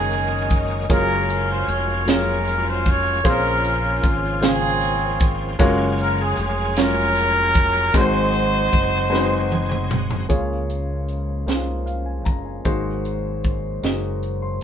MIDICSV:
0, 0, Header, 1, 7, 480
1, 0, Start_track
1, 0, Key_signature, -5, "major"
1, 0, Tempo, 784314
1, 547, Time_signature, 6, 3, 24, 8
1, 8955, End_track
2, 0, Start_track
2, 0, Title_t, "Horn section"
2, 0, Program_c, 0, 61
2, 0, Note_on_c, 0, 61, 76
2, 0, Note_on_c, 0, 63, 73
2, 0, Note_on_c, 0, 68, 97
2, 350, Note_off_c, 0, 68, 0
2, 531, Note_off_c, 0, 61, 0
2, 531, Note_off_c, 0, 63, 0
2, 555, Note_on_c, 0, 61, 81
2, 555, Note_on_c, 0, 70, 107
2, 557, Note_on_c, 0, 65, 71
2, 886, Note_off_c, 0, 70, 0
2, 918, Note_on_c, 0, 72, 85
2, 1030, Note_on_c, 0, 73, 85
2, 1032, Note_off_c, 0, 72, 0
2, 1246, Note_off_c, 0, 61, 0
2, 1247, Note_off_c, 0, 65, 0
2, 1268, Note_off_c, 0, 73, 0
2, 1276, Note_on_c, 0, 70, 100
2, 1277, Note_on_c, 0, 61, 73
2, 1280, Note_on_c, 0, 65, 79
2, 1631, Note_off_c, 0, 70, 0
2, 1638, Note_on_c, 0, 72, 87
2, 1752, Note_off_c, 0, 72, 0
2, 1757, Note_on_c, 0, 73, 99
2, 1967, Note_off_c, 0, 61, 0
2, 1968, Note_off_c, 0, 65, 0
2, 1992, Note_off_c, 0, 73, 0
2, 1999, Note_on_c, 0, 61, 72
2, 1999, Note_on_c, 0, 70, 95
2, 2002, Note_on_c, 0, 65, 76
2, 2472, Note_off_c, 0, 70, 0
2, 2687, Note_off_c, 0, 61, 0
2, 2689, Note_off_c, 0, 65, 0
2, 2722, Note_on_c, 0, 60, 90
2, 2723, Note_on_c, 0, 61, 87
2, 2723, Note_on_c, 0, 68, 114
2, 3229, Note_off_c, 0, 68, 0
2, 3409, Note_off_c, 0, 60, 0
2, 3410, Note_off_c, 0, 61, 0
2, 3681, Note_on_c, 0, 70, 85
2, 3785, Note_off_c, 0, 70, 0
2, 3796, Note_on_c, 0, 68, 75
2, 3903, Note_off_c, 0, 68, 0
2, 3910, Note_on_c, 0, 68, 86
2, 4131, Note_off_c, 0, 68, 0
2, 4146, Note_on_c, 0, 70, 117
2, 4154, Note_on_c, 0, 65, 79
2, 4157, Note_on_c, 0, 61, 79
2, 4845, Note_off_c, 0, 65, 0
2, 4847, Note_off_c, 0, 61, 0
2, 4865, Note_off_c, 0, 70, 0
2, 4865, Note_on_c, 0, 72, 127
2, 4877, Note_on_c, 0, 63, 84
2, 4878, Note_on_c, 0, 66, 90
2, 6047, Note_off_c, 0, 63, 0
2, 6048, Note_off_c, 0, 66, 0
2, 6066, Note_off_c, 0, 72, 0
2, 8955, End_track
3, 0, Start_track
3, 0, Title_t, "Grand piano"
3, 0, Program_c, 1, 0
3, 0, Control_c, 1, 64, 127
3, 0, Note_on_c, 1, 44, 71
3, 0, Note_on_c, 1, 58, 65
3, 0, Note_on_c, 1, 63, 60
3, 0, Note_on_c, 1, 66, 57
3, 0, Note_on_c, 1, 68, 64
3, 0, Note_on_c, 1, 73, 81
3, 0, Note_on_c, 1, 75, 76
3, 300, Note_off_c, 1, 58, 0
3, 301, Note_off_c, 1, 63, 0
3, 301, Note_off_c, 1, 66, 0
3, 303, Note_off_c, 1, 68, 0
3, 305, Note_off_c, 1, 75, 0
3, 547, Note_on_c, 1, 58, 81
3, 548, Note_on_c, 1, 65, 69
3, 550, Note_on_c, 1, 54, 75
3, 551, Note_on_c, 1, 68, 80
3, 554, Note_off_c, 1, 73, 0
3, 554, Note_on_c, 1, 73, 82
3, 555, Control_c, 1, 64, 0
3, 561, Note_off_c, 1, 44, 0
3, 672, Control_c, 1, 64, 127
3, 1019, Note_off_c, 1, 58, 0
3, 1019, Note_off_c, 1, 65, 0
3, 1020, Note_off_c, 1, 54, 0
3, 1021, Note_off_c, 1, 68, 0
3, 1022, Note_off_c, 1, 73, 0
3, 1263, Note_on_c, 1, 58, 62
3, 1268, Note_on_c, 1, 65, 60
3, 1270, Note_on_c, 1, 54, 58
3, 1271, Note_on_c, 1, 68, 65
3, 1271, Note_on_c, 1, 73, 72
3, 1737, Note_off_c, 1, 58, 0
3, 1739, Note_off_c, 1, 65, 0
3, 1740, Note_off_c, 1, 54, 0
3, 1740, Note_off_c, 1, 68, 0
3, 1741, Note_off_c, 1, 73, 0
3, 1983, Note_on_c, 1, 58, 82
3, 1984, Note_on_c, 1, 60, 59
3, 1985, Note_on_c, 1, 46, 62
3, 1987, Note_on_c, 1, 65, 76
3, 1988, Note_on_c, 1, 68, 78
3, 1989, Note_on_c, 1, 72, 95
3, 1995, Control_c, 1, 64, 0
3, 2023, Note_on_c, 1, 61, 72
3, 2025, Note_off_c, 1, 60, 0
3, 2091, Control_c, 1, 64, 127
3, 2456, Note_off_c, 1, 58, 0
3, 2458, Note_off_c, 1, 65, 0
3, 2459, Note_off_c, 1, 68, 0
3, 2459, Note_off_c, 1, 72, 0
3, 2476, Note_off_c, 1, 61, 0
3, 2680, Note_off_c, 1, 46, 0
3, 2699, Note_on_c, 1, 58, 73
3, 2700, Note_on_c, 1, 49, 58
3, 2704, Note_on_c, 1, 65, 61
3, 2705, Note_on_c, 1, 68, 60
3, 2707, Note_on_c, 1, 72, 74
3, 3174, Note_off_c, 1, 49, 0
3, 3174, Note_off_c, 1, 58, 0
3, 3176, Note_off_c, 1, 65, 0
3, 3177, Note_off_c, 1, 68, 0
3, 3178, Note_off_c, 1, 72, 0
3, 3421, Note_on_c, 1, 56, 99
3, 3422, Note_on_c, 1, 61, 92
3, 3425, Note_on_c, 1, 65, 88
3, 3427, Note_on_c, 1, 66, 84
3, 3427, Note_on_c, 1, 70, 102
3, 3434, Control_c, 1, 64, 0
3, 3541, Control_c, 1, 64, 127
3, 3895, Note_off_c, 1, 56, 0
3, 3896, Note_off_c, 1, 61, 0
3, 3897, Note_off_c, 1, 65, 0
3, 3898, Note_off_c, 1, 66, 0
3, 3898, Note_off_c, 1, 70, 0
3, 4143, Note_on_c, 1, 61, 64
3, 4144, Note_on_c, 1, 56, 65
3, 4147, Note_on_c, 1, 65, 58
3, 4149, Note_on_c, 1, 54, 63
3, 4151, Note_on_c, 1, 73, 71
3, 4616, Note_off_c, 1, 56, 0
3, 4616, Note_off_c, 1, 61, 0
3, 4618, Note_off_c, 1, 65, 0
3, 4619, Note_off_c, 1, 54, 0
3, 4620, Note_off_c, 1, 73, 0
3, 4857, Note_on_c, 1, 56, 87
3, 4858, Note_on_c, 1, 60, 68
3, 4858, Note_on_c, 1, 63, 68
3, 4861, Note_on_c, 1, 44, 67
3, 4862, Note_on_c, 1, 66, 81
3, 4862, Note_on_c, 1, 70, 76
3, 4874, Control_c, 1, 64, 0
3, 4902, Note_on_c, 1, 72, 96
3, 4903, Note_off_c, 1, 70, 0
3, 4970, Control_c, 1, 64, 127
3, 5333, Note_off_c, 1, 56, 0
3, 5334, Note_off_c, 1, 60, 0
3, 5334, Note_off_c, 1, 63, 0
3, 5336, Note_off_c, 1, 66, 0
3, 5356, Note_off_c, 1, 72, 0
3, 5559, Note_off_c, 1, 44, 0
3, 5567, Note_on_c, 1, 56, 77
3, 5569, Note_on_c, 1, 60, 65
3, 5572, Note_on_c, 1, 63, 75
3, 5575, Note_on_c, 1, 66, 73
3, 5578, Note_on_c, 1, 71, 69
3, 5616, Note_on_c, 1, 72, 90
3, 5622, Note_off_c, 1, 71, 0
3, 6049, Note_off_c, 1, 56, 0
3, 6050, Note_off_c, 1, 60, 0
3, 6051, Note_off_c, 1, 63, 0
3, 6052, Note_off_c, 1, 66, 0
3, 6073, Note_off_c, 1, 72, 0
3, 6295, Note_on_c, 1, 58, 69
3, 6296, Note_on_c, 1, 61, 66
3, 6297, Note_on_c, 1, 65, 66
3, 6298, Note_on_c, 1, 49, 57
3, 6300, Note_on_c, 1, 68, 66
3, 6303, Note_on_c, 1, 73, 73
3, 6313, Control_c, 1, 64, 0
3, 6427, Control_c, 1, 64, 127
3, 6773, Note_off_c, 1, 58, 0
3, 6774, Note_off_c, 1, 61, 0
3, 6774, Note_off_c, 1, 65, 0
3, 6776, Note_off_c, 1, 68, 0
3, 6777, Note_off_c, 1, 73, 0
3, 6999, Note_off_c, 1, 49, 0
3, 7017, Note_on_c, 1, 58, 55
3, 7018, Note_on_c, 1, 61, 49
3, 7020, Note_on_c, 1, 63, 40
3, 7023, Note_on_c, 1, 68, 51
3, 7024, Note_on_c, 1, 72, 60
3, 7061, Note_on_c, 1, 65, 58
3, 7063, Note_off_c, 1, 63, 0
3, 7259, Note_on_c, 1, 77, 50
3, 7377, Note_off_c, 1, 77, 0
3, 7380, Note_on_c, 1, 80, 45
3, 7495, Note_off_c, 1, 58, 0
3, 7495, Note_off_c, 1, 61, 0
3, 7498, Note_off_c, 1, 68, 0
3, 7498, Note_off_c, 1, 72, 0
3, 7498, Note_off_c, 1, 80, 0
3, 7498, Note_on_c, 1, 82, 54
3, 7517, Note_off_c, 1, 65, 0
3, 7617, Note_off_c, 1, 82, 0
3, 7620, Note_on_c, 1, 80, 45
3, 7739, Note_on_c, 1, 58, 65
3, 7740, Note_on_c, 1, 63, 68
3, 7744, Note_on_c, 1, 44, 56
3, 7744, Note_on_c, 1, 66, 71
3, 7744, Note_on_c, 1, 68, 66
3, 7745, Note_on_c, 1, 72, 80
3, 7757, Control_c, 1, 64, 0
3, 7852, Note_off_c, 1, 80, 0
3, 7879, Control_c, 1, 64, 127
3, 8216, Note_off_c, 1, 58, 0
3, 8217, Note_off_c, 1, 63, 0
3, 8219, Note_off_c, 1, 66, 0
3, 8219, Note_off_c, 1, 68, 0
3, 8220, Note_off_c, 1, 72, 0
3, 8443, Note_off_c, 1, 44, 0
3, 8464, Note_on_c, 1, 58, 56
3, 8465, Note_on_c, 1, 63, 55
3, 8466, Note_on_c, 1, 66, 53
3, 8468, Note_on_c, 1, 68, 55
3, 8471, Note_on_c, 1, 75, 62
3, 8826, Note_on_c, 1, 84, 49
3, 8940, Note_off_c, 1, 58, 0
3, 8940, Note_off_c, 1, 63, 0
3, 8941, Note_off_c, 1, 66, 0
3, 8942, Note_off_c, 1, 68, 0
3, 8943, Note_off_c, 1, 75, 0
3, 8943, Note_off_c, 1, 84, 0
3, 8955, End_track
4, 0, Start_track
4, 0, Title_t, "Tonewheel organ"
4, 0, Program_c, 2, 16
4, 0, Note_on_c, 2, 51, 63
4, 0, Note_on_c, 2, 56, 59
4, 0, Note_on_c, 2, 58, 60
4, 0, Note_on_c, 2, 61, 66
4, 0, Note_on_c, 2, 66, 80
4, 523, Note_off_c, 2, 51, 0
4, 523, Note_off_c, 2, 61, 0
4, 523, Note_off_c, 2, 66, 0
4, 524, Note_off_c, 2, 56, 0
4, 525, Note_off_c, 2, 58, 0
4, 544, Note_on_c, 2, 58, 60
4, 545, Note_on_c, 2, 56, 57
4, 546, Note_on_c, 2, 54, 71
4, 546, Note_on_c, 2, 61, 57
4, 547, Note_on_c, 2, 65, 69
4, 1960, Note_off_c, 2, 58, 0
4, 1961, Note_off_c, 2, 54, 0
4, 1961, Note_off_c, 2, 56, 0
4, 1961, Note_off_c, 2, 61, 0
4, 1962, Note_off_c, 2, 65, 0
4, 1992, Note_on_c, 2, 53, 62
4, 1994, Note_on_c, 2, 49, 60
4, 1994, Note_on_c, 2, 68, 73
4, 1994, Note_on_c, 2, 72, 66
4, 1996, Note_on_c, 2, 58, 54
4, 3404, Note_off_c, 2, 53, 0
4, 3405, Note_off_c, 2, 49, 0
4, 3405, Note_off_c, 2, 68, 0
4, 3405, Note_off_c, 2, 72, 0
4, 3406, Note_off_c, 2, 58, 0
4, 3423, Note_on_c, 2, 54, 80
4, 3424, Note_on_c, 2, 58, 69
4, 3424, Note_on_c, 2, 68, 87
4, 3424, Note_on_c, 2, 77, 67
4, 3426, Note_on_c, 2, 61, 79
4, 4839, Note_off_c, 2, 54, 0
4, 4840, Note_off_c, 2, 58, 0
4, 4840, Note_off_c, 2, 68, 0
4, 4840, Note_off_c, 2, 77, 0
4, 4841, Note_off_c, 2, 61, 0
4, 4861, Note_on_c, 2, 60, 61
4, 4861, Note_on_c, 2, 63, 67
4, 4862, Note_on_c, 2, 56, 60
4, 4862, Note_on_c, 2, 68, 73
4, 4863, Note_on_c, 2, 54, 64
4, 5825, Note_on_c, 2, 80, 65
4, 6048, Note_off_c, 2, 80, 0
4, 6058, Note_on_c, 2, 78, 67
4, 6279, Note_off_c, 2, 60, 0
4, 6279, Note_off_c, 2, 63, 0
4, 6280, Note_off_c, 2, 56, 0
4, 6280, Note_off_c, 2, 68, 0
4, 6281, Note_off_c, 2, 54, 0
4, 6285, Note_off_c, 2, 78, 0
4, 8955, End_track
5, 0, Start_track
5, 0, Title_t, "French horn section"
5, 0, Program_c, 3, 60
5, 6296, Note_on_c, 3, 61, 52
5, 6298, Note_on_c, 3, 53, 50
5, 6299, Note_on_c, 3, 56, 46
5, 6300, Note_on_c, 3, 58, 46
5, 7729, Note_off_c, 3, 61, 0
5, 7730, Note_off_c, 3, 53, 0
5, 7745, Note_on_c, 3, 54, 52
5, 7747, Note_on_c, 3, 72, 55
5, 8955, Note_off_c, 3, 54, 0
5, 8955, Note_off_c, 3, 56, 0
5, 8955, Note_off_c, 3, 58, 0
5, 8955, Note_off_c, 3, 72, 0
5, 8955, End_track
6, 0, Start_track
6, 0, Title_t, "Fingered electric bass"
6, 0, Program_c, 4, 33
6, 0, Note_on_c, 4, 30, 74
6, 526, Note_off_c, 4, 30, 0
6, 550, Note_on_c, 4, 30, 105
6, 1004, Note_off_c, 4, 30, 0
6, 1027, Note_on_c, 4, 29, 83
6, 1962, Note_off_c, 4, 29, 0
6, 1988, Note_on_c, 4, 34, 96
6, 2442, Note_off_c, 4, 34, 0
6, 2470, Note_on_c, 4, 32, 81
6, 3403, Note_off_c, 4, 32, 0
6, 3425, Note_on_c, 4, 30, 106
6, 3880, Note_off_c, 4, 30, 0
6, 3902, Note_on_c, 4, 29, 89
6, 4839, Note_off_c, 4, 29, 0
6, 4860, Note_on_c, 4, 32, 90
6, 5318, Note_off_c, 4, 32, 0
6, 5344, Note_on_c, 4, 30, 79
6, 6281, Note_off_c, 4, 30, 0
6, 6303, Note_on_c, 4, 37, 75
6, 7001, Note_off_c, 4, 37, 0
6, 7017, Note_on_c, 4, 36, 73
6, 7504, Note_off_c, 4, 36, 0
6, 7504, Note_on_c, 4, 30, 70
6, 7727, Note_off_c, 4, 30, 0
6, 7743, Note_on_c, 4, 32, 72
6, 8443, Note_off_c, 4, 32, 0
6, 8467, Note_on_c, 4, 30, 69
6, 8925, Note_off_c, 4, 30, 0
6, 8955, End_track
7, 0, Start_track
7, 0, Title_t, "Drums"
7, 72, Note_on_c, 9, 42, 38
7, 133, Note_off_c, 9, 42, 0
7, 305, Note_on_c, 9, 42, 59
7, 311, Note_on_c, 9, 36, 94
7, 367, Note_off_c, 9, 42, 0
7, 372, Note_off_c, 9, 36, 0
7, 550, Note_on_c, 9, 36, 102
7, 551, Note_on_c, 9, 42, 73
7, 611, Note_off_c, 9, 36, 0
7, 612, Note_off_c, 9, 42, 0
7, 795, Note_on_c, 9, 42, 46
7, 856, Note_off_c, 9, 42, 0
7, 1032, Note_on_c, 9, 42, 55
7, 1094, Note_off_c, 9, 42, 0
7, 1272, Note_on_c, 9, 42, 90
7, 1278, Note_on_c, 9, 38, 114
7, 1333, Note_off_c, 9, 42, 0
7, 1339, Note_off_c, 9, 38, 0
7, 1515, Note_on_c, 9, 42, 41
7, 1576, Note_off_c, 9, 42, 0
7, 1748, Note_on_c, 9, 42, 63
7, 1751, Note_on_c, 9, 36, 95
7, 1809, Note_off_c, 9, 42, 0
7, 1812, Note_off_c, 9, 36, 0
7, 1989, Note_on_c, 9, 36, 106
7, 1989, Note_on_c, 9, 42, 87
7, 2050, Note_off_c, 9, 36, 0
7, 2050, Note_off_c, 9, 42, 0
7, 2230, Note_on_c, 9, 42, 50
7, 2292, Note_off_c, 9, 42, 0
7, 2467, Note_on_c, 9, 42, 55
7, 2470, Note_on_c, 9, 36, 95
7, 2528, Note_off_c, 9, 42, 0
7, 2531, Note_off_c, 9, 36, 0
7, 2708, Note_on_c, 9, 42, 95
7, 2714, Note_on_c, 9, 38, 118
7, 2769, Note_off_c, 9, 42, 0
7, 2775, Note_off_c, 9, 38, 0
7, 2946, Note_on_c, 9, 42, 43
7, 3007, Note_off_c, 9, 42, 0
7, 3181, Note_on_c, 9, 42, 63
7, 3187, Note_on_c, 9, 36, 115
7, 3243, Note_off_c, 9, 42, 0
7, 3248, Note_off_c, 9, 36, 0
7, 3423, Note_on_c, 9, 42, 79
7, 3425, Note_on_c, 9, 36, 115
7, 3484, Note_off_c, 9, 42, 0
7, 3486, Note_off_c, 9, 36, 0
7, 3663, Note_on_c, 9, 42, 47
7, 3724, Note_off_c, 9, 42, 0
7, 3902, Note_on_c, 9, 42, 50
7, 3963, Note_off_c, 9, 42, 0
7, 4142, Note_on_c, 9, 42, 83
7, 4147, Note_on_c, 9, 38, 121
7, 4203, Note_off_c, 9, 42, 0
7, 4208, Note_off_c, 9, 38, 0
7, 4381, Note_on_c, 9, 42, 42
7, 4442, Note_off_c, 9, 42, 0
7, 4617, Note_on_c, 9, 42, 65
7, 4623, Note_on_c, 9, 36, 110
7, 4678, Note_off_c, 9, 42, 0
7, 4684, Note_off_c, 9, 36, 0
7, 4860, Note_on_c, 9, 36, 115
7, 4860, Note_on_c, 9, 42, 82
7, 4921, Note_off_c, 9, 42, 0
7, 4922, Note_off_c, 9, 36, 0
7, 5103, Note_on_c, 9, 42, 49
7, 5164, Note_off_c, 9, 42, 0
7, 5341, Note_on_c, 9, 42, 52
7, 5343, Note_on_c, 9, 36, 94
7, 5402, Note_off_c, 9, 42, 0
7, 5405, Note_off_c, 9, 36, 0
7, 5593, Note_on_c, 9, 38, 61
7, 5654, Note_off_c, 9, 38, 0
7, 5825, Note_on_c, 9, 48, 80
7, 5887, Note_off_c, 9, 48, 0
7, 5945, Note_on_c, 9, 47, 80
7, 6006, Note_off_c, 9, 47, 0
7, 6064, Note_on_c, 9, 45, 109
7, 6125, Note_off_c, 9, 45, 0
7, 6184, Note_on_c, 9, 43, 104
7, 6246, Note_off_c, 9, 43, 0
7, 6302, Note_on_c, 9, 36, 85
7, 6305, Note_on_c, 9, 42, 59
7, 6363, Note_off_c, 9, 36, 0
7, 6366, Note_off_c, 9, 42, 0
7, 6547, Note_on_c, 9, 42, 38
7, 6609, Note_off_c, 9, 42, 0
7, 6784, Note_on_c, 9, 42, 37
7, 6845, Note_off_c, 9, 42, 0
7, 7026, Note_on_c, 9, 42, 66
7, 7032, Note_on_c, 9, 38, 82
7, 7087, Note_off_c, 9, 42, 0
7, 7093, Note_off_c, 9, 38, 0
7, 7265, Note_on_c, 9, 42, 34
7, 7326, Note_off_c, 9, 42, 0
7, 7499, Note_on_c, 9, 42, 45
7, 7505, Note_on_c, 9, 36, 84
7, 7560, Note_off_c, 9, 42, 0
7, 7566, Note_off_c, 9, 36, 0
7, 7742, Note_on_c, 9, 42, 59
7, 7744, Note_on_c, 9, 36, 81
7, 7803, Note_off_c, 9, 42, 0
7, 7805, Note_off_c, 9, 36, 0
7, 7988, Note_on_c, 9, 42, 37
7, 8049, Note_off_c, 9, 42, 0
7, 8225, Note_on_c, 9, 42, 37
7, 8229, Note_on_c, 9, 36, 79
7, 8286, Note_off_c, 9, 42, 0
7, 8290, Note_off_c, 9, 36, 0
7, 8467, Note_on_c, 9, 42, 63
7, 8473, Note_on_c, 9, 38, 82
7, 8528, Note_off_c, 9, 42, 0
7, 8534, Note_off_c, 9, 38, 0
7, 8708, Note_on_c, 9, 42, 31
7, 8769, Note_off_c, 9, 42, 0
7, 8955, End_track
0, 0, End_of_file